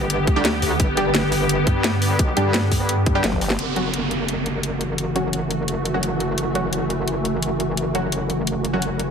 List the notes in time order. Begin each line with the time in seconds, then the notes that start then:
Already playing: G1 D3 B3 G4
0.01 cross-stick
0.10 closed hi-hat
0.27 D2, kick, closed hi-hat
0.36 G3 D4 G4
0.45 snare, closed hi-hat
0.62 D2, cross-stick, open hi-hat
0.80 G1, kick, closed hi-hat
0.97 G3 D4 G4, closed hi-hat
1.15 snare, closed hi-hat
1.32 open hi-hat
1.41 cross-stick
1.49 closed hi-hat
1.67 G2, kick, closed hi-hat
1.84 snare, closed hi-hat
2.02 open hi-hat
2.11 cross-stick
2.19 B1, kick, closed hi-hat
2.37 G2 G3 D4 G4, closed hi-hat
2.54 snare, closed hi-hat
2.72 G2, kick, open hi-hat
2.80 cross-stick
2.89 closed hi-hat
3.06 kick, closed hi-hat
3.15 G3 D4 G4
3.24 G1, snare, closed hi-hat, high tom
3.33 kick, high tom
3.41 cross-stick, open hi-hat
3.50 snare
3.59 F#1 E3 A3 F#4, closed hi-hat, downlifter
3.76 F#3 C#4 F#4, closed hi-hat
3.94 closed hi-hat
4.11 closed hi-hat
4.29 closed hi-hat
4.46 closed hi-hat
4.63 closed hi-hat
4.81 closed hi-hat
4.98 closed hi-hat
5.16 F#3 C#4 F#4, closed hi-hat
5.33 closed hi-hat
5.51 closed hi-hat
5.68 closed hi-hat
5.85 closed hi-hat
5.94 F#3 C#4 F#4
6.03 closed hi-hat
6.20 closed hi-hat
6.38 closed hi-hat
6.55 F#3 C#4 F#4, closed hi-hat
6.73 closed hi-hat
6.90 closed hi-hat
7.08 closed hi-hat
7.25 closed hi-hat
7.42 closed hi-hat
7.60 closed hi-hat
7.77 closed hi-hat
7.95 F#3 C#4 F#4, closed hi-hat
8.12 closed hi-hat
8.30 closed hi-hat
8.47 closed hi-hat
8.65 closed hi-hat
8.73 F#3 C#4 F#4
8.82 closed hi-hat
9.00 closed hi-hat